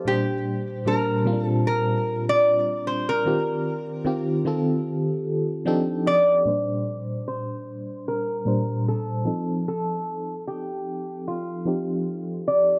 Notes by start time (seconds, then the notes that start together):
Already playing: G4
0.05 A#2 G3 D4 G4 C5
0.85 A#2 G3 D4 A#4 C5
1.25 A#2 G3 C4 F4
1.33 D4
1.43 A4
1.67 A#4
2.29 D5
2.87 C5
3.09 A#4
3.25 D#3 C4 F4 G4
4.05 D#3 C4 F4 G4
4.45 D#3 C4 F4 A4
5.65 F3 C4 D4 D#4 G4 A4 G5
6.07 D5 D#5
6.45 A#2 G3 D4 C5
7.28 C5
8.08 A#4
8.45 A#2 G3 D4 C5
8.88 A4
9.25 F3 C4 D#4 A4
9.68 A4
10.47 G4
11.28 F4
11.65 F3 C4 D#4 G4
12.48 D5